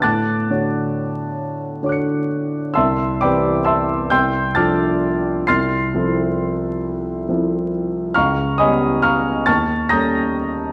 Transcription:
\new Staff \with { instrumentName = "Grand piano" } { \time 6/8 \key d \lydian \tempo 4. = 45 << { <a'' d''' fis''' a'''>2~ <a'' d''' fis''' a'''>8 r8 | <e'' a'' c''' e'''>8 <d'' g'' b'' d'''>8 <e'' a'' c''' e'''>8 <g'' c''' e''' g'''>8 <a'' d''' f''' a'''>4 | <c''' f''' a''' c''''>2~ <c''' f''' a''' c''''>8 r8 | <eis'' bes'' cis''' eis'''>8 <dis'' gis'' b'' dis'''>8 <eis'' bes'' cis''' eis'''>8 <a'' cis''' f''' a'''>8 <ais'' dis''' g''' ais'''>4 | } \\ { a,8 <d d' fis' cis''>4. <d d' fis' cis'' d'' d''' fis''' cis''''>4 | c,8 <e c' g' b'>4 c,8 <f d' f' a'>4 | c,8 <f c' e' a'>4. <f c' e' a'>4 | cis,8 <g b cis' g'>4 dis,8 <g ais cis' a'>4 | } >> }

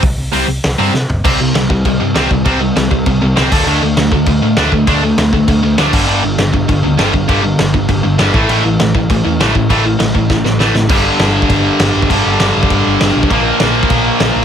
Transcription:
<<
  \new Staff \with { instrumentName = "Distorted electric guitar" } { \clef bass \time 4/4 \key c \lydian \tempo 4 = 199 r4 <c g c'>8 r4 <c g c'>8 r4 | <c g c'>8 <c g>8 <c g>8 <c g>8 <c g>8 <c g>8 <c g c'>8 <c g>8 | <c g c'>8 <c g>8 <c g>8 <c g>8 <c g>8 <c g>8 <c g c'>8 <d a d'>8 | <d a d'>8 <d a>8 <d a>8 <d a>8 <d a>8 <d a>8 <d a d'>8 <d a>8 |
<d a d'>8 <d a>8 <d a>8 <d a>8 <d a>8 <d a>8 <d a d'>8 <g, d g>8 | <g, d g>8 <g, d>8 <g, d>8 <g, d>8 <g, d>8 <g, d>8 <g, d g>8 <g, d>8 | <g, d g>8 <g, d>8 <g, d>8 <g, d>8 <g, d>8 <g, d>8 <g, d g>8 <a, e a>8 | <a, e a>8 <a, e>8 <a, e>8 <a, e>8 <a, e>8 <a, e>8 <a, e a>8 <a, e>8 |
<a, e a>8 <a, e>8 <a, e>8 <a, e>8 <a, e>8 <a, e>8 <a, e a>8 <a, e>8 | <g, d g>1 | <g, d g>1 | <bes, f bes>1 | }
  \new Staff \with { instrumentName = "Picked electric bass" } { \clef bass \time 4/4 \key c \lydian c,8 c,8 c,8 c,8 c,8 g,8 c8 g,,8 | c,8 c,8 c,8 c,8 c,8 g,8 c,8 c,8 | c,4 c,8 c,8 c,8 c,8 c,8 d,8 | d,8 d,8 d,8 d,8 d,8 a,8 d,8 d,8 |
d,4 d,8 d,8 d,8 d,8 d,8 g,,8 | g,,8 g,,8 g,,8 g,,8 g,,8 d,8 g,,8 g,,8 | g,,4 g,,8 g,,8 g,,8 g,,8 g,,8 a,,8 | a,,8 a,,8 a,,8 a,,8 a,,8 e,8 a,,8 a,,8 |
a,,4 a,,8 a,,8 a,,8 a,,8 a,,8 a,,8 | g,,4 g,,4 g,,4 g,,8 g,,8 | g,,8 g,,8 g,,8 g,,8 g,,8 g,,8 g,,8 b,,8 | bes,,4 bes,,4 bes,,4 bes,,8 bes,,8 | }
  \new DrumStaff \with { instrumentName = "Drums" } \drummode { \time 4/4 <hho bd>4 hho4 <hho sn>4 sn8 tomfh8 | <cymc bd>4 <cymc sn>8 bd8 <cymc bd>4 <cymc sn>8 bd8 | <cymc bd>4 <cymc sn>8 bd8 <cymc bd>4 <cymc sn>8 <cymc bd>8 | cymc4 <cymc sn>8 bd8 <cymc bd>4 <cymc sn>8 bd8 |
<cymc bd>4 <cymc sn>8 bd8 <cymc bd>4 <cymc sn>8 <cymc bd>8 | cymc4 <cymc sn>8 bd8 <cymc bd>4 <cymc sn>8 bd8 | <cymc bd>4 <cymc sn>8 bd8 <cymc bd>4 <cymc sn>8 bd8 | cymc4 <cymc sn>8 bd8 <cymc bd>4 <cymc sn>8 bd8 |
<cymc bd>4 <cymc sn>8 bd8 <bd sn>8 sn8 sn8 sn8 | <cymc bd>4 <cymc sn>8. bd16 <cymc bd>4 <cymc sn>8. bd16 | <cymc bd>4 <cymc sn>8. bd16 <cymc bd>4 <cymc sn>8. bd16 | <cymc bd>4 <cymc sn>8. bd16 <cymc bd>4 <cymc sn>4 | }
>>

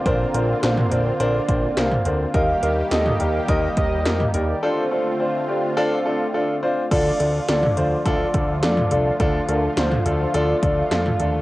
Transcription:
<<
  \new Staff \with { instrumentName = "Soft synth lead" } { \time 4/4 \key d \phrygian \tempo 4 = 105 bes'4 c''4 d''4 f''8. r16 | f''4 ees''8 f''8 ees''8 ees''4 d''8 | c''8 c''2. r8 | d''4 d''4 d''4 d''4 |
a'8 bes'8 c''4 d''4 f''8. r16 | }
  \new Staff \with { instrumentName = "Grand piano" } { \time 4/4 \key d \phrygian <d' bes' c''>8 <d' bes' c''>8 <d' bes' c''>8 <d' bes' c''>8 <d' bes' c''>8 <d' bes' c''>8 <d' bes' c''>8 <d' bes' c''>8 | <ees' g' bes'>8 <ees' g' bes'>8 <ees' g' a'>8 <ees' g' bes'>8 <ees' g' bes'>8 <ees' g' bes'>8 <ees' g' bes'>8 <ees' g' bes'>8 | <d' f' a'>8 <d' f' a'>8 <d' f' c''>8 <d' f' g'>8 <d' f' a'>8 <d' f' a'>8 <d' f' a'>8 <d' f' c''>8 | <d' f' a'>8 <d' f' a'>8 <d' f' a'>8 <d' f' c''>8 <d' f' a'>8 <d' f' a'>8 <d' f' a'>8 <d' f' a'>8 |
<d' f' a'>8 <d' f' a'>8 <d' f' c''>8 <d' f' a'>8 <d' f' a'>8 <d' f' a'>8 <d' f' a'>8 <d' f' a'>8 | }
  \new Staff \with { instrumentName = "Analog synth pad" } { \time 4/4 \key d \phrygian <d bes c' f'>1 | <ees g bes g'>1 | <d a c' f'>1 | <d f a f'>1~ |
<d f a f'>1 | }
  \new Staff \with { instrumentName = "Analog synth bass" } { \clef bass \time 4/4 \key d \phrygian bes,,8 bes,,8 bes,,8 bes,,8 bes,,8 bes,,8 c,8 d,8 | ees,8 ees,8 ees,8 ees,8 ees,8 ees,8 f,8 ees,8 | r1 | d,8 d,8 d,8 d,8 d,8 d,8 f,8 c,8 |
d,8 d,8 d,8 d,8 d,8 d,8 f,8 ees,8 | }
  \new DrumStaff \with { instrumentName = "Drums" } \drummode { \time 4/4 <hh bd>8 hh8 <hh sn>16 toml16 hh8 hh8 <hh bd>8 <hh sn>16 toml16 hh8 | <hh bd>8 hh8 <hh sn>16 toml16 hh8 <hh bd>8 <hh bd>8 <hh sn>16 toml16 hh8 | r4 r4 r4 r4 | <cymc hh bd>8 hh8 <hh sn>16 toml16 hh8 <hh bd>8 <hh bd>8 <hh sn>16 toml16 hh8 |
<hh bd>8 hh8 <hh sn>16 toml16 hh8 hh8 <hh bd>8 <hh sn>16 toml16 hh8 | }
>>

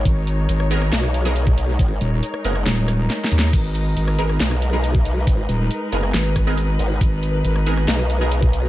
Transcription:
<<
  \new Staff \with { instrumentName = "String section" } { \time 4/4 \key gis \minor \tempo 4 = 138 << { cis''1~ | cis''1 | b'1~ | b'1~ |
b'1 | } \\ { <gis dis' ais'>1~ | <gis dis' ais'>1~ | <gis dis' ais'>1~ | <gis dis' ais'>1~ |
<gis dis' ais'>1 | } >> }
  \new Staff \with { instrumentName = "Synth stab" } { \time 4/4 \key gis \minor r4. <b dis' gis' ais'>16 r4 <b dis' gis' ais'>16 r4 | r4. <b dis' gis' ais'>16 r2 r16 | r4. <b dis' gis' ais'>16 r4 <b dis' gis' ais'>16 r4 | r4. <b dis' gis' ais'>16 r4 <b dis' gis' ais'>16 r4 |
r4. <b dis' gis' ais'>16 r4 <b dis' gis' ais'>16 r4 | }
  \new Staff \with { instrumentName = "Wobble bass" } { \clef bass \time 4/4 \key gis \minor gis,,4 gis,,4 r2 | r8 dis,,8 r4 dis,,4 r8 dis,8 | gis,,4 gis,,4 r2 | r8 dis,,8 r4 gis,,4. r8 |
gis,,4 gis,,4 r2 | }
  \new Staff \with { instrumentName = "Wobble bass" } { \clef bass \time 4/4 \key gis \minor r2 b,,2 | gis,,8 r4 fis,,8 r2 | r2 b,,2 | gis,,8 r4 fis,,8 r4. gis,,8 |
r2 b,,2 | }
  \new DrumStaff \with { instrumentName = "Drums" } \drummode { \time 4/4 <hh bd>8 hh8 hh16 ss16 hh16 ss16 <hh sn>16 ss16 hh8 hh16 bd16 hh8 | <hh bd>8 hh8 hh16 ss16 hh16 ss16 <hh sn>8 <hh ss>8 \tuplet 3/2 { <hh sn>16 r16 sn16 hh16 sn16 r16 } | <cymc hh bd>8 hh8 hh16 ss16 hh16 ss16 <hh sn>16 ss16 hh8 hh16 bd16 hh8 | <hh bd>8 hh8 hh8 hh16 ss16 <hh sn>8 <hh bd ss>8 hh8 hh8 |
<hh bd>8 hh8 hh16 ss16 hh16 ss16 <hh sn>16 ss16 hh8 hh16 bd16 hh8 | }
>>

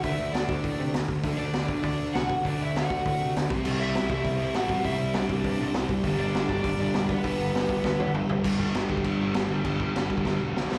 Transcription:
<<
  \new Staff \with { instrumentName = "Overdriven electric guitar" } { \time 4/4 \key g \major \tempo 4 = 200 <e' e''>4 <d' d''>2 r4 | r8 <d' d''>4. <d' d''>4 <fis' fis''>4 | <d' d''>8 <e' e''>8 <fis' fis''>2 r4 | r8 <e' e''>4 <e' e''>4. <fis' fis''>4 |
<e' e''>4 <d' d''>2 r4 | r8 <d' d''>4 <d' d''>8 <d' d''>8. <d' d''>4 <b b'>16 | <b b'>2. r4 | r1 |
r1 | }
  \new Staff \with { instrumentName = "Overdriven electric guitar" } { \clef bass \time 4/4 \key g \major <d a d'>1 | <d a d'>1 | <d a d'>2.~ <d a d'>8 <c g c'>8~ | <c g c'>2.~ <c g c'>8 <c g c'>8~ |
<c g c'>2.~ <c g c'>8 r8 | <g, d g>1 | <g, d g>1 | <g, d g>8 <g, d g>8 <g, d g>8 <g, d g>8 <g, d g>8 <g, d g>8 <g, d g>8 <g, d g>8 |
<g, d g>8 <g, d g>8 <g, d g>8 <g, d g>8 <g, d g>8 <g, d g>8 <g, d g>8 <g, d g>8 | }
  \new Staff \with { instrumentName = "Overdriven electric guitar" } { \clef bass \time 4/4 \key g \major r1 | r1 | r1 | <c g c'>2~ <c g c'>8 <c g c'>8 <c g c'>4 |
<c g c'>2~ <c g c'>8 <c g c'>8 <c g c'>4 | <g, d g>2~ <g, d g>8 <g, d g>8 <g, d g>4 | <g, d g>2~ <g, d g>8 <g, d g>8 <g, d g>4 | <g, d g>8 <g, d g>8 <g, d g>8 <g, d g>8 <g, d g>8 <g, d g>8 <g, d g>8 <g, d g>8 |
<g, d g>8 <g, d g>8 <g, d g>8 <g, d g>8 <g, d g>8 <g, d g>8 <g, d g>8 <g, d g>8 | }
  \new Staff \with { instrumentName = "Picked electric bass" } { \clef bass \time 4/4 \key g \major d,8 d,8 d,8 d,8 a,8 c8 d,8 d,8 | d,8 d,8 d,8 d,8 d,8 d,8 c,4 | d,8 d,8 d,8 d,8 a,8 c8 d,8 c,8 | c,8 c,8 c,8 c,8 c,8 c,8 a,,4 |
c,8 c,8 c,8 c,8 g,8 a,8 c,8 c,8 | g,,8 g,,8 g,,8 g,,8 g,,8 g,,8 e,,4 | g,,8 g,,8 g,,8 g,,8 d,8 e,8 g,,8 g,,8 | g,,8 g,,8 g,,8 g,,8 g,,8 g,,8 g,,8 g,,8 |
g,,4 g,,8 g,,8 g,,8 e,,8 b,,8 c,8 | }
  \new DrumStaff \with { instrumentName = "Drums" } \drummode { \time 4/4 <hho bd>4 <hho sn>8 bd8 <hho bd>4 <hho sn>8 bd8 | <hho bd>4 <hho sn>8 bd8 <hho bd>4 <hho sn>8 bd8 | <hho bd>4 <hho sn>8 bd8 <hho bd>4 <hho sn>8 bd8 | cymc4 <hho sn>8 bd8 <hho bd>4 <hho sn>8 bd8 |
<hho bd>4 <hho sn>8 bd8 <hho bd>4 <hho sn>8 bd8 | <hho bd>4 <hho sn>8 bd8 <hho bd>4 <hho sn>8 bd8 | <hho bd>4 <hho sn>8 bd8 <bd sn>8 tommh8 toml8 tomfh8 | <cymc bd>8 bd8 <cymc sn>8 bd16 bd16 <cymc bd>4 <cymc sn>4 |
<cymc bd>8 bd8 <cymc sn>8 bd16 bd16 <bd sn>4 sn8 sn8 | }
>>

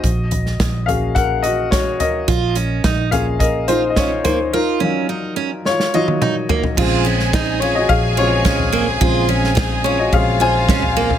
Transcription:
<<
  \new Staff \with { instrumentName = "Violin section" } { \time 4/4 \key bes \minor \tempo 4 = 107 r1 | r1 | r1 | <aes' aes''>1~ |
<aes' aes''>2 <f' f''>2 | }
  \new Staff \with { instrumentName = "Upright piano" } { \time 4/4 \key bes \minor << { ees''4 r8 f''8 ges''8 ees''8 des''8 ees''8~ | ees''4 r8 f''8 ees''8 c''16. ees''32 des''8 c''8 | bes'2 des''8 ees''4 r8 | r4. des''16 ees''16 f''8 des''4 r8 |
r4. des''16 ees''16 f''8 aes''4 r8 | } \\ { ges'4 r8 aes'8 bes'8 ges'8 ges'8 bes'8~ | bes'4 r8 aes'8 bes'8 ees'8 f'8 ees'8 | ees'2 f'8 ges'4 r8 | r4. f'16 ges'16 aes'8 f'4 r8 |
r4. f'16 ges'16 aes'8 c''4 r8 | } >> }
  \new Staff \with { instrumentName = "Upright piano" } { \time 4/4 \key bes \minor r4. <bes des' ges'>4. r4 | r4. <bes des' f'>4. r4 | r8 <ges ees' f'>8 r4. <ges ees' f'>8 r4 | <des aes c'>4. r4 <des aes c'>8 r4 |
<des aes c'>4. r8 <des aes c'>8 r4. | }
  \new Staff \with { instrumentName = "Steel-string acoustic guitar" } { \time 4/4 \key bes \minor r1 | f'8 des'8 ees'8 des'16 r8. f'16 r16 des'16 r16 bes16 r16 | f'8 des'8 ees'8 des'16 r8. f'16 r16 ees'16 r16 bes16 r16 | f'8 des'8 ees'8 des'16 r8. f'16 r16 des'16 r16 bes16 r16 |
f'8 des'8 ees'8 des'16 r8. f'16 r16 des'16 r16 bes16 r16 | }
  \new Staff \with { instrumentName = "Fingered electric bass" } { \clef bass \time 4/4 \key bes \minor bes,,4 bes,,2~ bes,,8 r8 | bes,,4 bes,,2~ bes,,8 r8 | r1 | bes,,2 bes,,2 |
bes,,2 bes,,2 | }
  \new DrumStaff \with { instrumentName = "Drums" } \drummode { \time 4/4 <hh bd>8 <hh tomfh>16 sn16 <hh bd sn>8 <hh tomfh>8 <hh bd>8 hh8 <hh bd sn>8 <hh tomfh>8 | <hh bd>8 hh8 <hh bd sn>8 <hh tomfh>8 <hh bd>8 hh8 <hh bd sn>8 <hh tomfh>8 | r4 r4 sn16 sn8 tommh16 toml8 tomfh16 tomfh16 | <cymc bd>8 cymr16 sn16 <bd cymr sn>8 cymr8 <bd cymr>8 cymr8 <bd cymr sn>16 tomfh16 cymr8 |
<bd cymr>8 cymr16 sn16 <bd cymr sn>8 cymr8 <bd cymr>8 cymr8 <bd cymr sn>16 tomfh16 cymr16 tomfh16 | }
>>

